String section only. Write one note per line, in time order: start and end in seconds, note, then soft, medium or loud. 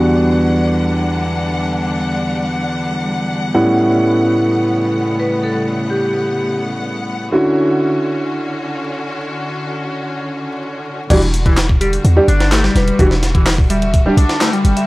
0.00 3.50 D3 medium
0.00 7.28 G3 medium
0.00 3.50 D4 medium
0.00 7.28 F#5 medium
3.54 7.28 C#3 medium
3.54 7.28 A3 medium
3.54 7.28 B3 medium
7.32 11.06 D3 medium
7.32 11.06 C#4 medium
7.32 11.06 F#4 medium
11.10 14.87 D3 medium
11.10 14.87 G3 medium
11.10 14.87 F#4 medium